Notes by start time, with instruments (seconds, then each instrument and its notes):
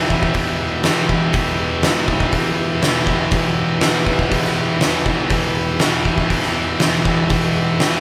Already playing: distorted electric guitar E2 B2 E3, transistor combo organ G4 B4 E5
0.10 distorted electric guitar E3, kick
0.15 distorted electric guitar B2
0.23 kick
0.34 distorted electric guitar E2 B2, kick, open hi-hat
0.39 distorted electric guitar E3
0.84 distorted electric guitar E2, snare, open hi-hat
0.88 distorted electric guitar B2 E3
1.09 distorted electric guitar E3, kick
1.14 distorted electric guitar B2
1.33 distorted electric guitar E2, kick, open hi-hat
1.37 distorted electric guitar B2 E3
1.83 distorted electric guitar E2, snare, open hi-hat
1.87 distorted electric guitar B2 E3
2.08 distorted electric guitar E3, kick
2.13 distorted electric guitar B2
2.20 kick
2.32 distorted electric guitar E2 B2, kick, open hi-hat
2.37 distorted electric guitar E3
2.82 distorted electric guitar E2 B2, snare, open hi-hat
2.86 distorted electric guitar E3
3.07 distorted electric guitar E3, kick
3.13 distorted electric guitar B2
3.31 distorted electric guitar E2 B2, transistor combo organ G4 B4, kick, open hi-hat
3.36 distorted electric guitar E3, transistor combo organ E5
3.80 distorted electric guitar E2 B2 E3, snare, open hi-hat
4.07 distorted electric guitar B2 E3, kick
4.19 kick
4.30 distorted electric guitar E2 B2 E3, kick, open hi-hat
4.45 snare
4.80 distorted electric guitar E2 B2 E3, snare, open hi-hat
5.05 distorted electric guitar B2 E3, kick
5.29 distorted electric guitar E2 B2 E3, kick, open hi-hat
5.80 distorted electric guitar E2 B2, snare, open hi-hat
5.85 distorted electric guitar E3
6.04 distorted electric guitar E3, kick
6.09 distorted electric guitar B2
6.18 kick
6.29 distorted electric guitar E2 B2 E3, kick, open hi-hat
6.43 snare
6.80 distorted electric guitar E2 B2 E3, snare, open hi-hat
7.05 distorted electric guitar B2 E3, kick
7.30 distorted electric guitar E2 B2 E3, transistor combo organ G4 B4, kick, open hi-hat
7.35 transistor combo organ E5
7.80 distorted electric guitar E2 B2 E3, snare, open hi-hat